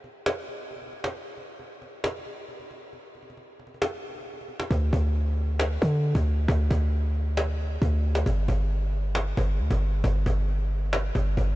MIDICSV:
0, 0, Header, 1, 3, 480
1, 0, Start_track
1, 0, Tempo, 444444
1, 1243, Time_signature, 4, 2, 24, 8
1, 12480, End_track
2, 0, Start_track
2, 0, Title_t, "808-style bass"
2, 0, Program_c, 0, 38
2, 5083, Note_on_c, 0, 38, 119
2, 5313, Note_off_c, 0, 38, 0
2, 5322, Note_on_c, 0, 38, 104
2, 6244, Note_off_c, 0, 38, 0
2, 6283, Note_on_c, 0, 50, 105
2, 6629, Note_off_c, 0, 50, 0
2, 6642, Note_on_c, 0, 38, 105
2, 6988, Note_off_c, 0, 38, 0
2, 7003, Note_on_c, 0, 38, 116
2, 7233, Note_off_c, 0, 38, 0
2, 7243, Note_on_c, 0, 38, 103
2, 8400, Note_off_c, 0, 38, 0
2, 8442, Note_on_c, 0, 38, 108
2, 8903, Note_off_c, 0, 38, 0
2, 8923, Note_on_c, 0, 31, 110
2, 9153, Note_off_c, 0, 31, 0
2, 9162, Note_on_c, 0, 31, 106
2, 10084, Note_off_c, 0, 31, 0
2, 10124, Note_on_c, 0, 31, 107
2, 10363, Note_on_c, 0, 38, 96
2, 10379, Note_off_c, 0, 31, 0
2, 10477, Note_off_c, 0, 38, 0
2, 10482, Note_on_c, 0, 31, 101
2, 10828, Note_off_c, 0, 31, 0
2, 10843, Note_on_c, 0, 31, 112
2, 11073, Note_off_c, 0, 31, 0
2, 11083, Note_on_c, 0, 31, 103
2, 12004, Note_off_c, 0, 31, 0
2, 12044, Note_on_c, 0, 31, 105
2, 12274, Note_off_c, 0, 31, 0
2, 12283, Note_on_c, 0, 31, 108
2, 12480, Note_off_c, 0, 31, 0
2, 12480, End_track
3, 0, Start_track
3, 0, Title_t, "Cajon"
3, 43, Note_on_c, 9, 38, 46
3, 151, Note_off_c, 9, 38, 0
3, 283, Note_on_c, 9, 38, 107
3, 391, Note_off_c, 9, 38, 0
3, 523, Note_on_c, 9, 38, 37
3, 631, Note_off_c, 9, 38, 0
3, 763, Note_on_c, 9, 38, 39
3, 823, Note_off_c, 9, 38, 0
3, 823, Note_on_c, 9, 38, 38
3, 883, Note_off_c, 9, 38, 0
3, 883, Note_on_c, 9, 38, 37
3, 943, Note_off_c, 9, 38, 0
3, 943, Note_on_c, 9, 38, 37
3, 1003, Note_off_c, 9, 38, 0
3, 1003, Note_on_c, 9, 38, 45
3, 1111, Note_off_c, 9, 38, 0
3, 1124, Note_on_c, 9, 38, 93
3, 1232, Note_off_c, 9, 38, 0
3, 1243, Note_on_c, 9, 38, 41
3, 1351, Note_off_c, 9, 38, 0
3, 1483, Note_on_c, 9, 38, 39
3, 1591, Note_off_c, 9, 38, 0
3, 1723, Note_on_c, 9, 38, 44
3, 1831, Note_off_c, 9, 38, 0
3, 1963, Note_on_c, 9, 38, 46
3, 2071, Note_off_c, 9, 38, 0
3, 2202, Note_on_c, 9, 38, 104
3, 2310, Note_off_c, 9, 38, 0
3, 2363, Note_on_c, 9, 38, 40
3, 2443, Note_off_c, 9, 38, 0
3, 2443, Note_on_c, 9, 38, 37
3, 2551, Note_off_c, 9, 38, 0
3, 2683, Note_on_c, 9, 38, 29
3, 2791, Note_off_c, 9, 38, 0
3, 2803, Note_on_c, 9, 38, 44
3, 2911, Note_off_c, 9, 38, 0
3, 2923, Note_on_c, 9, 38, 46
3, 3031, Note_off_c, 9, 38, 0
3, 3163, Note_on_c, 9, 38, 43
3, 3271, Note_off_c, 9, 38, 0
3, 3403, Note_on_c, 9, 38, 23
3, 3483, Note_off_c, 9, 38, 0
3, 3483, Note_on_c, 9, 38, 33
3, 3563, Note_off_c, 9, 38, 0
3, 3563, Note_on_c, 9, 38, 39
3, 3643, Note_off_c, 9, 38, 0
3, 3643, Note_on_c, 9, 38, 47
3, 3751, Note_off_c, 9, 38, 0
3, 3883, Note_on_c, 9, 38, 39
3, 3963, Note_off_c, 9, 38, 0
3, 3963, Note_on_c, 9, 38, 40
3, 4043, Note_off_c, 9, 38, 0
3, 4043, Note_on_c, 9, 38, 41
3, 4122, Note_off_c, 9, 38, 0
3, 4122, Note_on_c, 9, 38, 105
3, 4230, Note_off_c, 9, 38, 0
3, 4243, Note_on_c, 9, 38, 32
3, 4351, Note_off_c, 9, 38, 0
3, 4363, Note_on_c, 9, 38, 22
3, 4422, Note_off_c, 9, 38, 0
3, 4422, Note_on_c, 9, 38, 27
3, 4483, Note_off_c, 9, 38, 0
3, 4483, Note_on_c, 9, 38, 33
3, 4542, Note_off_c, 9, 38, 0
3, 4542, Note_on_c, 9, 38, 38
3, 4603, Note_off_c, 9, 38, 0
3, 4603, Note_on_c, 9, 38, 29
3, 4683, Note_off_c, 9, 38, 0
3, 4683, Note_on_c, 9, 38, 37
3, 4762, Note_off_c, 9, 38, 0
3, 4762, Note_on_c, 9, 38, 45
3, 4843, Note_off_c, 9, 38, 0
3, 4843, Note_on_c, 9, 38, 45
3, 4951, Note_off_c, 9, 38, 0
3, 4963, Note_on_c, 9, 38, 95
3, 5071, Note_off_c, 9, 38, 0
3, 5083, Note_on_c, 9, 36, 110
3, 5191, Note_off_c, 9, 36, 0
3, 5322, Note_on_c, 9, 36, 96
3, 5430, Note_off_c, 9, 36, 0
3, 5563, Note_on_c, 9, 38, 48
3, 5671, Note_off_c, 9, 38, 0
3, 5803, Note_on_c, 9, 38, 47
3, 5911, Note_off_c, 9, 38, 0
3, 6042, Note_on_c, 9, 38, 108
3, 6123, Note_off_c, 9, 38, 0
3, 6123, Note_on_c, 9, 38, 30
3, 6203, Note_off_c, 9, 38, 0
3, 6203, Note_on_c, 9, 38, 39
3, 6283, Note_on_c, 9, 36, 98
3, 6311, Note_off_c, 9, 38, 0
3, 6391, Note_off_c, 9, 36, 0
3, 6523, Note_on_c, 9, 38, 28
3, 6631, Note_off_c, 9, 38, 0
3, 6642, Note_on_c, 9, 36, 88
3, 6750, Note_off_c, 9, 36, 0
3, 6763, Note_on_c, 9, 38, 45
3, 6871, Note_off_c, 9, 38, 0
3, 7003, Note_on_c, 9, 36, 110
3, 7111, Note_off_c, 9, 36, 0
3, 7243, Note_on_c, 9, 36, 92
3, 7351, Note_off_c, 9, 36, 0
3, 7483, Note_on_c, 9, 38, 46
3, 7591, Note_off_c, 9, 38, 0
3, 7723, Note_on_c, 9, 38, 45
3, 7831, Note_off_c, 9, 38, 0
3, 7962, Note_on_c, 9, 38, 107
3, 8070, Note_off_c, 9, 38, 0
3, 8203, Note_on_c, 9, 38, 36
3, 8311, Note_off_c, 9, 38, 0
3, 8442, Note_on_c, 9, 36, 90
3, 8503, Note_on_c, 9, 38, 38
3, 8550, Note_off_c, 9, 36, 0
3, 8563, Note_off_c, 9, 38, 0
3, 8563, Note_on_c, 9, 38, 37
3, 8623, Note_off_c, 9, 38, 0
3, 8623, Note_on_c, 9, 38, 39
3, 8683, Note_off_c, 9, 38, 0
3, 8683, Note_on_c, 9, 38, 47
3, 8791, Note_off_c, 9, 38, 0
3, 8803, Note_on_c, 9, 38, 99
3, 8911, Note_off_c, 9, 38, 0
3, 8923, Note_on_c, 9, 36, 111
3, 9031, Note_off_c, 9, 36, 0
3, 9163, Note_on_c, 9, 36, 92
3, 9271, Note_off_c, 9, 36, 0
3, 9403, Note_on_c, 9, 38, 45
3, 9511, Note_off_c, 9, 38, 0
3, 9643, Note_on_c, 9, 38, 47
3, 9751, Note_off_c, 9, 38, 0
3, 9882, Note_on_c, 9, 38, 109
3, 9963, Note_off_c, 9, 38, 0
3, 9963, Note_on_c, 9, 38, 31
3, 10043, Note_off_c, 9, 38, 0
3, 10043, Note_on_c, 9, 38, 39
3, 10123, Note_on_c, 9, 36, 99
3, 10151, Note_off_c, 9, 38, 0
3, 10231, Note_off_c, 9, 36, 0
3, 10363, Note_on_c, 9, 38, 28
3, 10471, Note_off_c, 9, 38, 0
3, 10483, Note_on_c, 9, 36, 86
3, 10591, Note_off_c, 9, 36, 0
3, 10603, Note_on_c, 9, 38, 47
3, 10711, Note_off_c, 9, 38, 0
3, 10843, Note_on_c, 9, 36, 106
3, 10951, Note_off_c, 9, 36, 0
3, 11083, Note_on_c, 9, 36, 93
3, 11163, Note_on_c, 9, 38, 33
3, 11191, Note_off_c, 9, 36, 0
3, 11243, Note_off_c, 9, 38, 0
3, 11243, Note_on_c, 9, 38, 40
3, 11323, Note_off_c, 9, 38, 0
3, 11323, Note_on_c, 9, 38, 46
3, 11431, Note_off_c, 9, 38, 0
3, 11563, Note_on_c, 9, 38, 39
3, 11643, Note_off_c, 9, 38, 0
3, 11643, Note_on_c, 9, 38, 40
3, 11723, Note_off_c, 9, 38, 0
3, 11723, Note_on_c, 9, 38, 40
3, 11803, Note_off_c, 9, 38, 0
3, 11803, Note_on_c, 9, 38, 109
3, 11911, Note_off_c, 9, 38, 0
3, 11923, Note_on_c, 9, 38, 33
3, 12031, Note_off_c, 9, 38, 0
3, 12044, Note_on_c, 9, 36, 100
3, 12103, Note_on_c, 9, 38, 28
3, 12152, Note_off_c, 9, 36, 0
3, 12163, Note_off_c, 9, 38, 0
3, 12163, Note_on_c, 9, 38, 33
3, 12223, Note_off_c, 9, 38, 0
3, 12223, Note_on_c, 9, 38, 36
3, 12283, Note_on_c, 9, 36, 89
3, 12331, Note_off_c, 9, 38, 0
3, 12363, Note_on_c, 9, 38, 38
3, 12391, Note_off_c, 9, 36, 0
3, 12443, Note_off_c, 9, 38, 0
3, 12443, Note_on_c, 9, 38, 44
3, 12480, Note_off_c, 9, 38, 0
3, 12480, End_track
0, 0, End_of_file